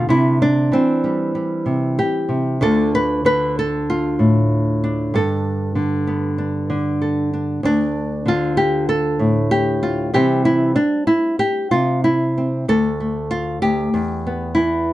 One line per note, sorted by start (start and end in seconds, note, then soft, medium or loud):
0.00 0.71 D3 medium
0.00 1.03 G3 medium
0.09 0.71 C3 medium
0.09 0.41 E4 loud
0.42 1.36 D4 medium
0.72 2.58 E3 medium
0.72 2.31 C4 medium
1.04 1.34 G3 soft
1.35 2.61 G3 medium
1.66 1.98 C3 medium
1.99 2.62 G4 medium
2.29 2.61 C3 medium
2.61 5.13 D2 medium
2.61 3.24 D3 soft
2.61 4.83 D4 medium
2.61 3.88 F4 medium
2.61 2.94 A4 loud
2.95 3.25 B4 loud
3.25 5.74 D3 medium
3.25 3.57 B4 loud
3.59 4.52 A4 medium
3.90 5.14 F4 medium
4.19 5.13 A2 medium
4.84 6.07 D4 soft
5.14 7.59 G2 medium
5.14 7.00 A4 medium
5.75 6.68 D3 medium
6.07 7.59 B3 medium
6.38 7.32 D4 medium
6.70 7.59 D3 medium
7.02 7.60 A4 soft
7.33 7.60 D4 soft
7.63 10.14 D2 medium
7.63 8.57 D4 medium
8.26 10.14 D3 medium
8.26 9.21 F4 loud
8.57 8.88 G4 loud
8.89 9.51 A4 loud
9.19 10.13 A2 medium
9.51 10.13 G4 loud
9.83 10.14 F4 medium
10.14 10.77 C3 medium
10.14 10.77 E3 medium
10.14 12.69 G3 medium
10.14 12.36 C4 medium
10.14 10.45 G4 loud
10.45 10.75 E4 medium
10.76 11.07 D4 medium
11.07 11.39 E4 medium
11.39 11.71 G4 loud
11.71 12.64 C3 medium
11.71 12.04 F4 medium
12.04 12.68 E4 medium
12.38 12.65 C4 soft
12.68 13.62 D2 medium
12.68 13.30 A4 medium
13.00 13.95 A3 soft
13.31 13.62 F4 loud
13.62 13.93 D2 medium
13.62 14.54 G4 medium
13.94 14.93 E2 medium
14.27 14.93 B3 soft
14.55 14.93 E3 medium
14.55 14.93 E4 medium